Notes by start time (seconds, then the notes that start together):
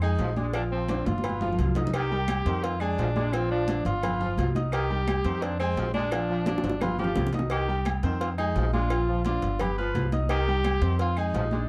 Already playing: F2
0.02 G#3 D#4 G#4 G#5, high conga, low agogo, claves
0.19 A#1 F3, cowbell, high conga, low timbale
0.36 G#3 D4 D5 D6, high conga, low agogo
0.53 F3 D4 F4 F5, cowbell, high conga, low agogo, claves
0.71 F3 C4, high conga
0.88 D4 D5 D6, cowbell, high conga, high timbale, low agogo
1.06 G1 F4, cowbell, high conga, high timbale
1.18 high conga
1.24 B3 B4 B5, cowbell, low agogo, claves
1.29 high conga
1.41 F3 F4 F5 F6, low conga, low timbale
1.52 low conga
1.58 C2, cowbell, low timbale, low agogo
1.64 low conga
1.75 D#4 D#5 D#6, cowbell, low conga, low timbale
1.87 low conga
1.93 D#3 G4, cowbell, high conga, low agogo, claves
2.11 G3 G4 G5, high conga
2.28 cowbell, high conga, low timbale, low agogo, claves
2.46 F2 D#3 C4 C5 C6, cowbell
2.63 F4, cowbell, high conga, low agogo
2.80 G#3 D4 G#4 G#5, high conga, low agogo, claves
2.98 A#1 F3, cowbell, high conga, low timbale
3.15 G#3 D4 D5 D6, high conga, low agogo
3.33 F3 C4 F4 F5, cowbell, high conga, low agogo, claves
3.50 F3 D4, high conga
3.68 D4 D5 D6, cowbell, high conga, low timbale, low agogo
3.85 G1 F4, cowbell, high conga
4.03 B3 B4 B5, cowbell, high conga, low conga, low agogo, claves
4.20 F3 F4 F5 F6, high conga, low conga
4.38 C2, cowbell, high conga, low timbale, low agogo
4.55 D#4 D#5 D#6, cowbell, high conga
4.72 D#3 G4, cowbell, high conga, low agogo, claves
4.90 G3 G4 G5, high conga
5.08 cowbell, high conga, low timbale, low agogo, claves
5.25 F2 D#3 C4 C5 C6, cowbell
5.42 D4, cowbell, high conga, low agogo
5.59 G#3 C4 G#4 G#5, high conga, low agogo, claves
5.76 A#1 F3, cowbell, high conga, low timbale
5.94 G#3 D4 D5 D6, high conga, low agogo
6.11 F3 F4 F5, cowbell, high conga, low agogo, claves
6.29 F3, high conga
6.46 D4 D5 D6, cowbell, high bongo, high conga, low timbale, low agogo
6.58 high bongo
6.64 G1, cowbell, high conga, high timbale
6.70 high bongo
6.81 B3 F4 B4 B5, cowbell, low bongo, high conga, low conga, low timbale, low agogo, claves
6.99 F3 F4 G4 F5 F6, high conga, low conga, low timbale
7.04 low bongo
7.16 C2, cowbell, low bongo, high conga, low timbale, low agogo
7.27 low bongo
7.33 D#4 D#5 D#6, cowbell, high conga, low timbale
7.39 low bongo
7.50 D#3 G4, cowbell, high conga, low agogo, claves
7.68 G3 G4 G5, high conga
7.85 cowbell, high conga, low timbale, low agogo, claves
8.03 F2 D#3 C4 C5 C6, cowbell
8.20 F4, cowbell, high conga, low agogo
8.38 G#3 D#4 G#4 G#5, high conga, low agogo, claves
8.55 A#1 F3, cowbell, high conga, low timbale
8.73 G#3 D4 F4 D5 D6, high conga, low agogo
8.90 F3 F4 F5, cowbell, high conga, low agogo, claves
9.07 F3, high conga
9.25 D4 F4 D5 D6, cowbell, high conga, low timbale, low agogo
9.42 G1, cowbell
9.59 B3 G4 B4 B5, cowbell, high conga, low conga, low agogo, claves
9.78 F3 F4 B4 F5 F6, high conga
9.95 C2, cowbell, high conga, low timbale, low agogo
10.12 D#4 D#5 D#6, cowbell, high conga
10.29 D#3 G4, cowbell, high conga, low agogo, claves
10.47 G3 G4 G5, high conga
10.64 cowbell, high conga, low timbale, low agogo, claves
10.82 F2 D#3 C4 C5 C6, cowbell
10.99 F4, cowbell, high conga, low agogo
11.17 G#3 D#4 G#4 G#5, high conga, low agogo, claves
11.34 A#1 F3, cowbell, high conga, low timbale
11.51 G#3 D4 D5 D6, high conga, low agogo